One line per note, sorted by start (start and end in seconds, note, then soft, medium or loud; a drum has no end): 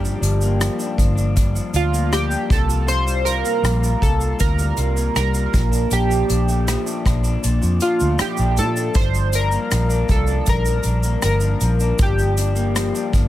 0.00 0.14 G1 loud
0.00 1.34 G2 medium
0.00 0.59 F3 medium
0.00 0.41 A#3 medium
0.00 0.20 D4 medium
0.00 0.95 G4 medium
0.05 shaker soft
0.21 0.67 G1 medium
0.21 0.78 D4 medium
0.21 closed hi-hat medium
0.21 shaker medium
0.41 1.92 A#3 medium
0.41 shaker soft
0.59 0.97 F3 medium
0.59 cross-stick medium
0.59 closed hi-hat medium
0.59 shaker medium
0.79 1.14 D4 medium
0.79 shaker soft
0.98 1.59 G1 medium
0.98 1.55 F3 medium
0.98 kick medium
0.98 closed hi-hat soft
0.98 shaker medium
1.15 1.34 D4 medium
1.15 shaker soft
1.35 2.57 G2 medium
1.35 1.72 D4 medium
1.35 kick medium
1.35 closed hi-hat medium
1.35 shaker medium
1.55 2.11 F3 medium
1.55 shaker medium
1.74 2.35 D2 medium
1.74 2.29 D4 medium
1.74 2.14 F4 medium
1.74 closed hi-hat medium
1.74 shaker medium
1.92 2.89 A#3 medium
1.92 shaker soft
2.11 3.05 F3 medium
2.11 2.51 G4 loud
2.11 cross-stick medium
2.11 closed hi-hat medium
2.11 shaker medium
2.30 2.57 D4 medium
2.30 shaker soft
2.48 3.41 C2 loud
2.48 2.85 C3 medium
2.48 2.90 A4 medium
2.48 kick loud
2.48 closed hi-hat medium
2.48 shaker medium
2.68 2.86 F4 medium
2.68 shaker medium
2.86 4.37 C3 medium
2.86 3.24 F4 medium
2.86 3.27 C5 loud
2.86 closed hi-hat medium
2.86 shaker medium
3.05 3.61 G3 medium
3.05 shaker soft
3.24 3.80 F4 medium
3.24 4.04 A#4 loud
3.24 closed hi-hat medium
3.24 shaker medium
3.43 4.95 A#3 medium
3.43 shaker soft
3.62 3.94 A#1 loud
3.62 3.99 G3 medium
3.62 cross-stick medium
3.62 closed hi-hat medium
3.62 shaker medium
3.81 4.20 F4 medium
3.81 shaker medium
4.01 4.32 C2 medium
4.01 4.56 G3 medium
4.01 4.41 A4 medium
4.01 kick medium
4.01 closed hi-hat soft
4.01 shaker soft
4.21 4.39 F4 medium
4.21 shaker soft
4.38 4.70 D2 loud
4.38 5.52 C3 medium
4.38 4.76 F4 medium
4.38 5.15 A#4 medium
4.38 kick medium
4.38 closed hi-hat medium
4.38 shaker medium
4.57 5.13 G3 medium
4.57 shaker medium
4.77 5.08 C2 medium
4.77 5.34 F4 medium
4.77 closed hi-hat medium
4.77 shaker medium
4.96 6.48 A#3 medium
4.96 shaker medium
5.14 5.46 C2 medium
5.14 5.60 G3 medium
5.14 5.94 A#4 loud
5.14 cross-stick medium
5.14 closed hi-hat medium
5.14 shaker medium
5.34 5.71 F4 medium
5.34 shaker soft
5.52 5.84 A#1 medium
5.52 5.89 A#2 medium
5.52 kick loud
5.52 closed hi-hat medium
5.52 shaker medium
5.71 5.91 D4 medium
5.71 shaker medium
5.90 6.22 A#1 medium
5.90 7.42 A#2 medium
5.90 6.28 D4 medium
5.90 7.02 G4 medium
5.90 closed hi-hat medium
5.90 shaker medium
6.09 6.66 F3 medium
6.09 shaker soft
6.28 6.75 A#1 medium
6.28 6.86 D4 medium
6.28 closed hi-hat medium
6.28 shaker medium
6.48 8.00 A3 medium
6.48 shaker soft
6.67 7.05 F3 medium
6.67 cross-stick medium
6.67 closed hi-hat medium
6.67 shaker medium
6.86 7.23 D4 medium
6.86 shaker medium
7.05 7.36 A#1 medium
7.05 7.61 F3 medium
7.05 kick medium
7.05 cross-stick medium
7.05 closed hi-hat medium
7.05 shaker soft
7.24 7.43 D4 medium
7.24 shaker soft
7.43 7.59 A#1 loud
7.43 8.95 A#2 medium
7.43 7.82 D4 medium
7.43 closed hi-hat medium
7.43 shaker medium
7.62 7.78 F2 medium
7.62 8.20 F3 medium
7.62 shaker medium
7.80 8.38 D4 medium
7.80 8.21 F4 medium
7.80 closed hi-hat medium
7.80 shaker medium
8.00 8.16 D2 medium
8.00 9.03 A3 medium
8.00 shaker soft
8.19 8.57 F3 medium
8.19 8.59 G4 loud
8.19 cross-stick loud
8.19 closed hi-hat medium
8.19 shaker medium
8.37 8.60 A#1 medium
8.37 8.76 D4 medium
8.37 shaker soft
8.57 8.88 A#2 loud
8.57 9.13 F3 medium
8.57 8.97 A4 medium
8.57 closed hi-hat medium
8.57 shaker medium
8.77 8.95 D4 medium
8.77 shaker medium
8.95 9.56 G1 loud
8.95 10.45 G2 medium
8.95 9.32 D4 medium
8.95 9.35 C5 loud
8.95 kick loud
8.95 closed hi-hat medium
8.95 shaker medium
9.13 9.71 F3 medium
9.13 shaker soft
9.33 9.88 D4 medium
9.33 10.12 A#4 loud
9.33 closed hi-hat medium
9.33 shaker medium
9.51 11.04 A#3 medium
9.51 shaker soft
9.71 10.02 A#1 loud
9.71 10.09 F3 medium
9.71 cross-stick medium
9.71 closed hi-hat medium
9.71 shaker medium
9.89 10.26 D4 medium
9.89 shaker medium
10.09 10.40 C2 medium
10.09 10.67 F3 medium
10.09 10.49 A4 medium
10.09 kick medium
10.09 closed hi-hat soft
10.09 shaker soft
10.27 10.46 D4 medium
10.27 shaker soft
10.46 10.78 A#1 loud
10.46 11.97 G2 medium
10.46 10.85 D4 medium
10.46 11.24 A#4 loud
10.46 kick medium
10.46 closed hi-hat medium
10.46 shaker medium
10.66 11.22 F3 medium
10.66 shaker medium
10.83 11.15 A#1 medium
10.83 11.41 D4 medium
10.83 closed hi-hat medium
10.83 shaker medium
11.03 12.55 A#3 medium
11.03 shaker medium
11.22 11.54 G1 medium
11.22 11.61 F3 medium
11.22 12.02 A#4 medium
11.22 cross-stick medium
11.22 closed hi-hat medium
11.22 shaker medium
11.40 11.79 D4 medium
11.40 shaker medium
11.61 11.92 A#1 medium
11.61 12.18 F3 medium
11.61 closed hi-hat soft
11.61 shaker medium
11.80 11.98 D4 medium
11.80 shaker medium
11.98 12.90 G1 medium
11.98 13.28 G2 medium
11.98 12.37 D4 medium
11.98 13.11 G4 medium
11.98 kick loud
11.98 closed hi-hat medium
11.98 shaker medium
12.18 12.74 F3 medium
12.18 shaker soft
12.37 12.93 D4 medium
12.37 closed hi-hat medium
12.37 shaker medium
12.55 13.28 A#3 medium
12.55 shaker soft
12.74 13.12 F3 medium
12.74 cross-stick medium
12.74 closed hi-hat medium
12.74 shaker medium
12.95 13.28 D4 medium
12.95 shaker medium
13.13 13.28 G1 loud
13.13 13.28 F3 medium
13.13 kick medium
13.13 closed hi-hat medium
13.13 shaker medium